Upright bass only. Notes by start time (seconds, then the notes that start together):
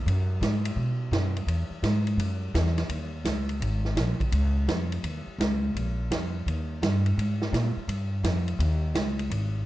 0.06 F#2
0.41 G#2
0.76 B2
1.11 F#2
1.47 E2
1.70 muted upright bass stroke
1.83 G#2
2.17 F#2
2.54 E2
2.89 D#2
3.25 C#2
3.60 G#1
3.96 A#1
4.32 C#2
4.67 F2
5.03 D#2
5.27 muted upright bass stroke
5.38 C#2
5.74 A#1
6.11 F2
6.46 D#2
6.82 G2
7.17 G#2
7.53 A#2
7.77 muted upright bass stroke
7.88 G2
8.23 F2
8.59 D#2
8.94 C#2
9.30 G#1